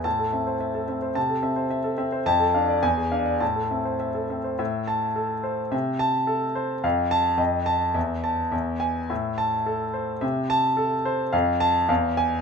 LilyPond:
<<
  \new Staff \with { instrumentName = "Grand piano" } { \time 2/4 \key a \minor \tempo 4 = 107 << { a''8 r4. | a''8 r4. | a''8 r8 gis''8 r8 | a''8 r4. |
r8 a''4 r8 | r8 a''4 r8 | r8 a''8 r8 a''8 | r8 a''8 r8 gis''8 |
r8 a''4 r8 | r8 a''4 r8 | r8 a''8 r8 gis''8 | } \\ { r16 a'16 e''16 c''16 e''16 a'16 e''16 c''16 | r16 a'16 e''16 c''16 e''16 a'16 e''16 c''16 | r16 a'16 f''16 d''16 r16 gis'16 f''16 d''16 | r16 a'16 e''16 c''16 e''16 a'16 e''16 c''16 |
e''8. r16 a'8 c''8 | e''8. r16 a'8 c''8 | f''8. r16 ees''8. r16 | e''8. r16 e''8. r16 |
e''8. r16 a'8 c''8 | e''8. r16 a'8 c''8 | f''8. r16 f''8. r16 | } >> }
  \new Staff \with { instrumentName = "Grand piano" } { \clef bass \time 2/4 \key a \minor a,8 c'8 r8 c'8 | c8 c'8 r8 c'8 | f,8 d'8 e,8 d'8 | a,8 c'8 r8 c'8 |
a,2 | c2 | f,4 f,4 | e,4 e,4 |
a,2 | c2 | f,4 e,4 | }
>>